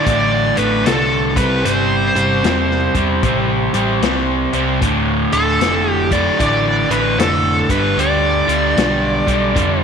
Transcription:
0.05 A1 D2 A2 D3 D5, kick, closed hi-hat
0.57 A1 D2 A2 D3 B4, closed hi-hat
0.86 C2 D2 A2 D3 A4, snare, closed hi-hat
1.36 C2 C3 G3 C4 B4, kick, closed hi-hat
1.64 G1 C3 G3 C4 C5, closed hi-hat
2.15 G1 C3 G3 C4, closed hi-hat
2.44 E1 C3 G3 C4, snare, closed hi-hat
2.71 snare
2.94 E1 C3 G3 C4, kick, closed hi-hat
3.23 A1 C3 G3 C4, kick, closed hi-hat
3.73 A1 C3 G3 C4, closed hi-hat
4.02 C2 C3 G3 C4, snare, closed hi-hat
4.53 C2 C3 G3 C4, closed hi-hat
4.82 D1 D2 A2 D3, kick, closed hi-hat
5.32 D1 D2 A2 D3 A4, closed hi-hat
5.61 F1 D2 A2 D3, snare, closed hi-hat
5.92 G4
6.11 D2 A2 D3 D5, kick, closed hi-hat
6.38 A1 D2 A2 D3 D5, kick, closed hi-hat
6.89 A1 D2 A2 D3 B4, closed hi-hat
7.18 F1 D2 A2 D3 A4, snare, closed hi-hat
7.69 G1 G2 D3 G3 B4, kick, closed hi-hat
7.97 D2 G2 D3 G3 D5, closed hi-hat
8.47 D2 G2 D3 G3, closed hi-hat
8.76 B1 G2 D3 G3, snare, closed hi-hat
9.27 B1 G2 D3 G3, kick, closed hi-hat
9.55 F1 G2 D3 G3, kick, closed hi-hat
9.80 C5

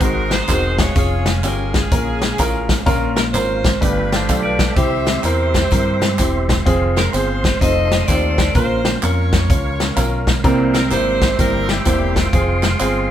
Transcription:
Already playing: G#4 C6
0.00 G#1 G#2 G#3 C4 D#4 F#4 A#4 C5 D#5 F#5, kick, closed hi-hat, tambourine
0.31 D#4 F#4 C5, snare, closed hi-hat, tambourine
0.48 E1 G#3 C4 D#4 F#4 A#4, kick, clap, closed hi-hat, tambourine
0.78 F4 G#4 C#5, kick, snare, closed hi-hat, tambourine
0.95 F1 C#4 F4 G#4 F5, kick, closed hi-hat, tambourine
1.26 snare, closed hi-hat, tambourine
1.44 G1 C#4 F4 G4 A#4, clap, closed hi-hat, tambourine
1.74 C#4 F4 G#4, kick, snare, closed hi-hat, tambourine
1.91 A#1 C#4 F4 A#4, kick, closed hi-hat, tambourine
2.21 snare, closed hi-hat, tambourine
2.38 A1 C#4 F4 A#4, kick, clap, closed hi-hat, tambourine
2.69 kick, snare, closed hi-hat, tambourine
2.86 A#1 A#2 C#4 F4 A#4, kick, closed hi-hat, tambourine
3.16 A#4, snare, closed hi-hat, tambourine
3.33 G#1 C#4 F4 A#4 C5, clap, closed hi-hat, tambourine
3.64 kick, snare, closed hi-hat, tambourine
3.81 G1 G2 A3 D4 F4 G4 A4 B4 G5 B5, kick, closed hi-hat, tambourine
4.11 F4 A4 C5, snare, closed hi-hat, tambourine
4.29 B1 A3 D4 F4 G4 A4, kick, clap, closed hi-hat, tambourine
4.43 F4 B4 D5
4.59 kick, snare, closed hi-hat, tambourine
4.75 C2 C3 C4 E4 G4 C5 E5 C6, kick, closed hi-hat, tambourine
5.06 snare, closed hi-hat, tambourine
5.23 E2 C4 E4 G4 A#4 C5, clap, closed hi-hat, tambourine
5.54 kick, snare, closed hi-hat, tambourine
5.71 G2 C4 E4 A#4, kick, closed hi-hat, tambourine
6.01 snare, closed hi-hat, tambourine
6.19 E1 C4 E4 G4, kick, clap, closed hi-hat, tambourine
6.49 kick, snare, closed hi-hat, tambourine
6.66 F1 C4 F4 G#4 F5, kick, closed hi-hat, tambourine
6.96 A#4, snare, closed hi-hat, tambourine
7.13 G1 C4 F4 G#4 C5, clap, closed hi-hat, tambourine
7.44 kick, snare, closed hi-hat, tambourine
7.60 F1 A3 C4 D#4 F4 A4 C5 D#5, kick, closed hi-hat, tambourine
7.91 snare, closed hi-hat, tambourine
8.07 D#2 A3 C4 D#4 F4 G4 A4 D5, kick, clap, closed hi-hat, tambourine
8.38 kick, snare, closed hi-hat, tambourine
8.54 A#1 A#2 C#4 F4 A#4 C5 F5, kick, closed hi-hat, tambourine
8.85 snare, closed hi-hat, tambourine
9.02 F2 C#4 F4 A#4 C#5, clap, closed hi-hat, tambourine
9.33 kick, snare, closed hi-hat, tambourine
9.49 C#2 C#4 F4 C#5, kick, closed hi-hat, tambourine
9.80 snare, closed hi-hat, tambourine
9.96 B1 C#4 F4 A#4, kick, clap, closed hi-hat, tambourine
10.27 kick, snare, closed hi-hat, tambourine
10.43 C2 C3 G3 A#3 C4 E4 A#4 E5 G5 C6, kick, closed hi-hat, tambourine
10.74 A#4, snare, closed hi-hat, tambourine
10.91 G#1 G3 A#3 C4 E4 G4 A#4 C5, clap, closed hi-hat, tambourine
11.21 kick, snare, closed hi-hat, tambourine
11.39 G1 G3 A#3 C4 E4 G4 A#4 C5, kick, closed hi-hat, tambourine
11.69 A#3 E4 G4, snare, closed hi-hat, tambourine
11.85 E1 G3 A#3 C4 E4 C5, kick, clap, closed hi-hat, tambourine
12.16 G#3 C4 F4, kick, snare, closed hi-hat, tambourine
12.33 F1 C4 F4 G#4 C5 F5 C6, kick, closed hi-hat, tambourine
12.63 snare, clap, closed hi-hat, tambourine
12.80 G1 C4 F4 G#4, clap, closed hi-hat, tambourine

